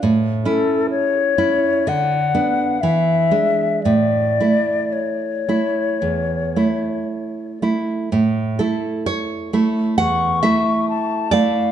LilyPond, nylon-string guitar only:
\new Staff \with { instrumentName = "Nylon-string guitar" } { \time 4/4 \key a \major \tempo 4 = 62 << { r1 | r1 | r8 a'8 cis''4 fis''8 e''4 d''8 | } \\ { a,8 <cis' e'>4 <cis' e'>8 d8 <b d'>8 e8 <gis d'>8 | a,8 <a e'>4 <a e'>8 e,8 <a e'>4 <a e'>8 | a,8 <a e'>4 <a e'>8 e,8 <a e'>4 <a e'>8 | } >> }